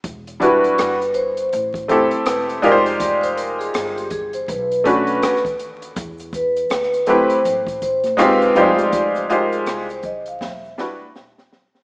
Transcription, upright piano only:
0.40 0.96 G3 medium
0.40 0.96 D4 medium
0.40 0.96 E4 medium
0.40 0.97 F#4 medium
0.40 0.97 B4 medium
1.88 2.63 A3 medium
1.88 2.63 C4 medium
1.88 2.64 E4 medium
1.88 2.63 G4 medium
1.88 2.64 A4 medium
2.62 3.99 G#3 medium
2.62 4.00 D#4 medium
2.62 4.00 F4 medium
2.62 4.00 G4 medium
2.62 2.72 A#4 medium
2.72 4.04 C5 medium
4.84 5.31 A3 medium
4.84 5.31 C#4 medium
4.84 5.32 D4 medium
4.84 5.32 F#4 medium
4.84 5.32 B4 medium
7.07 7.36 A3 medium
7.07 7.36 C4 medium
7.07 7.37 E4 medium
7.07 7.37 G4 medium
7.07 7.37 B4 medium
8.17 8.60 G#3 medium
8.17 8.75 C4 medium
8.17 8.55 D#4 medium
8.17 8.55 F4 medium
8.17 8.56 G4 medium
8.55 8.64 G3 medium
8.55 9.24 D#4 medium
8.55 9.24 F4 medium
8.55 9.25 G4 medium
8.55 9.25 C5 medium
8.62 9.27 G#3 medium
9.30 9.85 G#3 medium
9.30 9.85 D#4 medium
9.30 9.85 F4 medium
9.30 9.86 G4 medium
9.30 9.86 C5 medium
10.78 11.06 G3 medium
10.78 11.07 D4 medium
10.78 11.07 E4 medium
10.78 11.07 F#4 medium
10.78 11.08 B4 medium

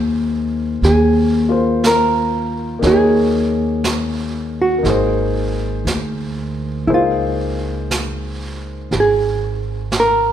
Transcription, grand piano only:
0.00 2.78 A#3 soft
0.00 2.80 D#4 soft
0.00 2.81 G#4 soft
0.00 1.50 C5 medium
1.49 2.82 F4 soft
1.49 2.82 A#4 soft
1.49 2.83 C5 soft
2.79 4.77 A#3 soft
2.79 4.81 D#4 soft
2.79 4.84 G#4 soft
2.84 4.86 C#5 soft
4.78 6.86 A#3 soft
4.83 6.87 D#4 soft
4.83 6.88 G#4 soft
4.89 6.89 C5 soft
6.88 10.32 A#3 soft
6.88 10.32 D#4 soft
6.88 10.32 G#4 soft
6.88 10.32 C5 soft

